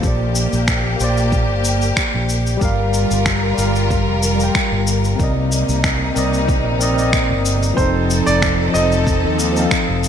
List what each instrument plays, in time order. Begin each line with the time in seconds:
0.00 fretless electric bass A#1, tine electric piano A#3 G4, string section A#3 G4, kick, cabasa
0.05 tine electric piano C5 D5
0.35 cabasa
0.53 fretless electric bass A#1, cabasa
0.68 finger snap, kick, cabasa
0.96 fretless electric bass A#1, tine electric piano A#3 G4, cabasa
1.01 tine electric piano C5 D5
1.17 cabasa
1.32 kick, cabasa
1.50 fretless electric bass G1
1.65 cabasa
1.82 cabasa
1.97 finger snap, kick, cabasa
2.14 fretless electric bass A#1
2.29 cabasa
2.47 cabasa
2.57 tine electric piano G3 G4
2.61 fretless electric bass G1, string section G3 F4 A#4, tine electric piano A#4 F5, kick, cabasa
2.94 cabasa
3.11 fretless electric bass G1, cabasa
3.26 finger snap, kick, cabasa
3.54 fretless electric bass G1, tine electric piano G3 G4
3.58 tine electric piano A#4 F5, cabasa
3.76 cabasa
3.90 kick, cabasa
4.07 fretless electric bass F1
4.23 cabasa
4.36 tine electric piano G3 G4
4.40 tine electric piano A#4 G5, cabasa
4.55 finger snap, kick, cabasa
4.72 fretless electric bass G1
4.87 cabasa
5.04 cabasa
5.16 fretless electric bass C2, tine electric piano C4 A#4, kick, cabasa
5.20 string section C3 A#3 D#4, tine electric piano D5 D#5
5.52 cabasa
5.68 fretless electric bass C2, cabasa
5.84 finger snap, kick, cabasa
6.14 fretless electric bass C2, tine electric piano C4 A#4 D5 D#5, cabasa
6.34 cabasa
6.48 kick, cabasa
6.65 fretless electric bass A#1
6.79 tine electric piano C4 A#4 D5, cabasa
6.83 tine electric piano D#5
6.94 tine electric piano C4 A#4
6.98 tine electric piano D5 D#5, cabasa
7.13 finger snap, kick, cabasa
7.30 fretless electric bass G1
7.45 cabasa
7.63 cabasa
7.74 fretless electric bass F1, tine electric piano F3 C4, grand piano C5, kick
7.78 string section F3 C4 D#4 A4, tine electric piano D#4 A4, cabasa
8.10 cabasa
8.26 fretless electric bass F1, grand piano D5, cabasa
8.42 finger snap, kick, cabasa
8.70 fretless electric bass F1, tine electric piano F3 C4, grand piano D#5
8.75 tine electric piano A4 D#5, cabasa
8.92 cabasa
9.07 kick, cabasa
9.24 fretless electric bass D#2
9.39 cabasa
9.52 tine electric piano F3 C4
9.57 tine electric piano A4 F5, cabasa
9.71 finger snap, kick, cabasa
9.88 fretless electric bass F1
10.04 cabasa